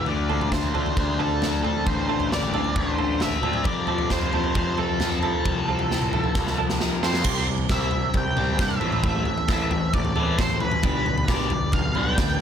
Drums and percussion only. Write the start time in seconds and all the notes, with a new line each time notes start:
0.06 floor tom
0.30 floor tom
0.41 floor tom
0.52 kick, snare
0.64 floor tom
0.75 floor tom
0.86 floor tom
0.97 kick, floor tom
1.20 floor tom
1.42 snare, floor tom
1.64 floor tom
1.87 kick, floor tom
2.20 floor tom
2.32 snare
2.43 floor tom, mid tom
2.54 floor tom, mid tom
2.64 floor tom
2.76 kick, floor tom
2.98 floor tom
3.20 snare, floor tom
3.43 floor tom, mid tom
3.53 mid tom
3.64 kick, floor tom
3.87 floor tom
3.98 floor tom
4.10 kick, snare
4.21 floor tom
4.33 floor tom
4.44 floor tom
4.55 kick, floor tom
4.78 floor tom
5.00 snare, floor tom
5.23 floor tom
5.45 kick, floor tom
5.79 floor tom
5.91 snare
6.02 floor tom, mid tom
6.13 floor tom, mid tom
6.24 floor tom
6.35 kick, snare
6.47 snare
6.70 snare
6.80 snare
7.03 snare
7.14 snare
7.24 kick, floor tom, crash
7.47 floor tom
7.58 floor tom
7.69 kick, snare, mid tom
7.91 floor tom
8.14 kick, floor tom
8.37 floor tom, mid tom
8.59 kick, snare
8.70 floor tom
8.81 floor tom, mid tom
8.92 mid tom
9.03 kick, floor tom
9.25 floor tom
9.38 floor tom
9.48 kick, snare, mid tom
9.71 floor tom
9.93 kick, floor tom
10.05 floor tom
10.16 floor tom, mid tom
10.39 kick, snare
10.50 floor tom
10.60 floor tom, mid tom
10.71 mid tom
10.83 kick, floor tom
11.06 floor tom
11.18 floor tom
11.28 kick, snare, mid tom
11.50 floor tom
11.72 kick, floor tom
11.95 floor tom, mid tom
12.18 kick, snare
12.30 floor tom